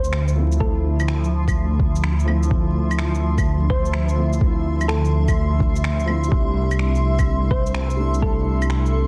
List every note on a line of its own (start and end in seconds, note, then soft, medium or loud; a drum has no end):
0.00 6.30 D2 medium
0.00 0.32 F3 medium
0.00 6.28 F3 medium
0.00 0.34 A3 medium
0.00 0.35 C4 medium
0.00 0.36 E4 medium
0.00 0.14 C5 medium
0.00 9.07 E5 medium
0.00 9.07 C6 medium
0.04 shaker medium
0.13 finger snap loud
0.28 shaker soft
0.35 0.56 F3 medium
0.35 0.58 A3 medium
0.35 0.59 C4 medium
0.39 0.60 E4 medium
0.52 shaker medium
0.57 2.23 F3 medium
0.57 2.25 A3 medium
0.57 1.08 A4 medium
0.57 kick loud
0.63 2.26 C4 medium
0.63 2.27 E4 medium
1.00 claves medium
1.00 shaker medium
1.08 finger snap loud
1.24 shaker soft
1.48 kick medium
1.48 claves medium
1.48 shaker medium
1.80 kick loud
1.96 shaker medium
2.04 finger snap loud
2.19 shaker soft
2.25 2.46 F3 medium
2.25 2.48 A3 medium
2.25 2.49 C4 medium
2.25 claves soft
2.29 2.50 E4 medium
2.43 4.14 F3 medium
2.43 shaker medium
2.50 4.15 A3 medium
2.50 4.16 C4 medium
2.50 kick loud
2.55 4.18 E4 medium
2.91 claves medium
2.91 shaker medium
2.98 finger snap loud
3.15 shaker soft
3.38 kick medium
3.38 claves soft
3.38 shaker medium
3.70 3.95 C5 medium
3.70 kick loud
3.85 shaker medium
3.94 finger snap loud
4.09 shaker soft
4.15 4.36 F3 medium
4.15 4.38 A3 medium
4.15 4.40 C4 medium
4.20 4.40 E4 medium
4.33 shaker medium
4.37 6.04 F3 medium
4.37 6.05 A3 medium
4.37 kick loud
4.43 6.07 C4 medium
4.43 6.08 E4 medium
4.81 claves medium
4.81 shaker medium
4.88 5.36 A4 medium
4.88 finger snap loud
5.05 shaker soft
5.28 kick medium
5.28 claves medium
5.28 shaker medium
5.60 kick loud
5.76 shaker medium
5.84 finger snap loud
6.00 shaker soft
6.06 6.29 F3 medium
6.06 6.29 A3 medium
6.06 6.30 C4 medium
6.06 6.31 E4 medium
6.06 claves soft
6.24 shaker medium
6.28 9.07 C2 medium
6.28 7.94 G3 medium
6.28 7.96 A3 medium
6.32 7.97 D4 medium
6.32 9.07 A4 medium
6.32 kick loud
6.36 7.99 E4 medium
6.71 claves medium
6.71 shaker medium
6.79 finger snap loud
6.95 shaker soft
7.19 kick medium
7.19 claves soft
7.19 shaker medium
7.51 7.76 C5 medium
7.51 kick loud
7.66 shaker medium
7.75 finger snap loud
7.90 shaker soft
7.96 8.17 G3 medium
7.96 8.19 A3 medium
7.96 8.20 D4 medium
7.96 8.21 E4 medium
8.14 shaker medium
8.18 9.07 G3 medium
8.18 9.07 A3 medium
8.18 8.70 A4 medium
8.18 kick loud
8.24 9.07 D4 medium
8.24 9.07 E4 medium
8.62 claves medium
8.62 shaker soft
8.70 finger snap loud
8.86 shaker soft